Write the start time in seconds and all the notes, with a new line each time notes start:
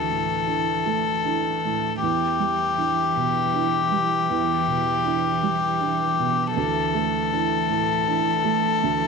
Already playing: D2 E3 A3 A4
0.09 A2
0.47 D4 E4
0.86 A3
1.25 D4 E4
1.65 A2
2.02 E2 E3 G4
2.40 G3
2.78 D4 E4
3.16 B2
3.53 D4 E4
3.92 G3
4.30 E2
4.68 B2
5.05 D4 E4
5.43 G3
5.80 D4 E4
6.19 B2
6.55 D2 E3 A4
6.94 A3
7.32 D4 E4
7.69 A2
8.08 D4 E4
8.45 A3
8.83 D2